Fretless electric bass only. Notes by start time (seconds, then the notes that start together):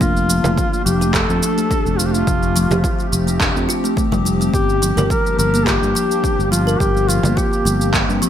0.01 F1
0.45 F1
0.86 F1
1.29 F2
1.86 F1
2.27 F1
2.71 F1
3.12 F1
3.56 F2
4.12 F1
4.54 G1
4.97 G1
5.39 G1
5.82 G2
6.39 G1
6.80 G1
7.24 G1
7.65 G1
8.08 G2